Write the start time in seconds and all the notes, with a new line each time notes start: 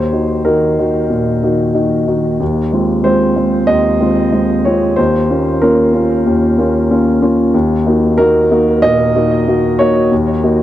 Already playing: D#2 C5
0.13 D#3 D#4 F#4
0.45 D#3 D#4 F#4 A#4
0.78 D#3 D#4 F#4
1.10 A#2
1.43 D#3 D#4 F#4
1.74 D#3 D#4 F#4
2.07 D#3 D#4 F#4
2.40 D#2
2.72 G#3 C4 F4
3.04 G#3 C4 F4 C5
3.36 G#3 C4 F4
3.67 D#2 D#5
4.01 G#3 C4 F4
4.32 G#3 C4 F4
4.65 G#3 C4 F4 C#5
4.96 D#2 C5
5.30 A#3 C#4 F4
5.62 A#3 C#4 F4 A#4
5.94 A#3 C#4 F4
6.26 D#2
6.58 A#3 C#4 F4
6.91 A#3 C#4 F4
7.22 A#3 C#4 F4
7.54 D#2
7.86 A#3 D#4 F#4
8.18 A#3 D#4 F#4 A#4
8.51 A#3 D#4 F#4
8.82 A#2 D#5
9.16 A#3 D#4 F#4
9.48 A#3 D#4 F#4
9.79 A#3 D#4 F#4 C#5
10.11 D#2
10.43 A#3 D#4 F#4